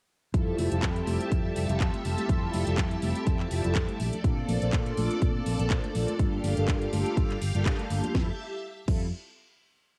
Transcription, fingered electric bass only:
0.34 F2
0.58 F1
0.72 F1
0.83 F2
1.07 F1
1.32 F2
1.56 F1
1.69 F1
1.80 F2
2.05 F1
2.29 F2
2.54 F1
2.67 F1
2.78 F2
3.03 F1
3.27 F2
3.51 F1
3.64 F1
4.00 A#1
4.24 A#2
4.49 A#1
4.62 A#1
4.73 A#2
4.97 A#1
5.22 A#2
5.46 A#1
5.60 A#1
5.95 A#1
6.19 G2
6.44 G1
6.57 G1
6.68 G2
6.93 G1
7.17 G2
7.42 G1
7.55 G1
7.66 G2
7.90 G1
8.15 F2
8.88 F2

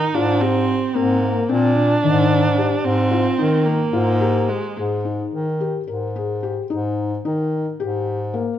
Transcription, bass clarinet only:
0.15 G#2
0.95 G#2
1.50 A#2
2.03 G#2
2.84 G#2
3.39 D#3
3.94 G#2
4.77 G#2
5.32 D#3
5.88 G#2
6.71 G#2
7.25 D#3
7.80 G#2

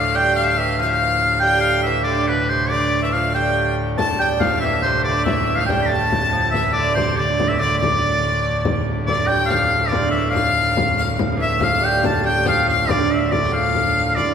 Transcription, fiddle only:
Already playing: F5
0.15 G5
0.36 F5
0.43 E5
0.51 F5
0.81 F5
0.86 E5
0.93 F5
1.45 G5
1.87 E5
2.06 D5
2.29 B4
2.50 C5
2.71 D5
3.03 E5
3.13 F5
3.35 G5
3.99 A5
4.21 G5
4.43 F5
4.64 E5
4.85 C5
5.06 D5
5.28 E5
5.60 F5
5.70 G5
5.93 A5
6.54 E5
6.69 E5
6.76 D5
7.19 D5
7.60 D5
7.81 D5
9.09 D5
9.29 G5
9.50 F5
9.92 D5
10.34 F5
10.97 F5
11.41 E5
11.61 F5
12.05 A5
12.25 G5
12.46 F5
12.68 F5
12.90 D5
13.30 D5
13.45 G5
13.52 F5
14.16 D5

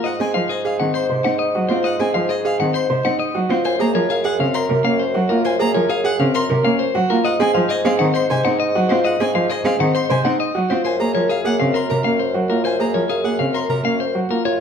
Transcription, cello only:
0.20 C4
0.35 F3
0.80 D#3
1.10 C3
1.25 C4
1.55 F#3
1.70 C4
2.00 C4
2.15 F3
2.60 D#3
2.90 C3
3.05 C4
3.35 F#3
3.50 C4
3.80 A#3
3.95 F3
4.40 C#3
4.70 C3
4.84 A#3
5.14 F#3
5.30 A#3
5.60 A#3
5.74 F3
6.20 C#3
6.50 C3
6.65 A#3
6.95 F#3
7.10 A#3
7.40 C4
7.55 F3
7.85 C4
8.00 D#3
8.30 C3
8.45 C4
8.75 F#3
8.90 C4
9.20 C4
9.35 F3
9.65 C4
9.80 D#3
10.10 C3
10.25 C4
10.55 F#3
10.70 C4
11.00 A#3
11.15 F3
11.45 A#3
11.60 C#3
11.90 C3
12.05 A#3
12.35 F#3
12.50 A#3
12.80 A#3
12.95 F3
13.25 A#3
13.39 C#3
13.69 C3
13.84 A#3
14.14 F#3
14.29 A#3

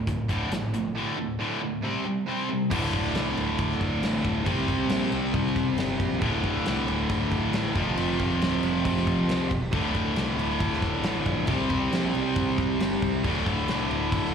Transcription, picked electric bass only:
0.07 D1
0.29 D1
0.51 A1
0.73 A#1
2.71 D1
2.93 D1
3.14 C2
3.36 D1
3.59 D1
4.01 A1
4.25 D1
4.46 C2
4.68 C2
4.88 A#1
5.10 C2
5.34 C2
5.77 G1
5.99 A#1
6.22 D1
6.44 D1
6.65 C2
6.87 D1
7.10 D1
7.53 A1
7.75 F1
7.97 F1
8.20 F1
8.42 D1
8.62 F1
8.85 F1
9.28 C2
9.51 E1
9.73 D1
9.95 D1
10.16 C2
10.37 D1
10.60 D1
11.03 A1
11.26 A#1
11.48 C2
11.70 C2
11.91 A#1
12.14 C2
12.36 C2
12.79 G1
13.02 C2
13.24 D1
13.46 D1
13.68 C2
13.91 D1
14.12 D1

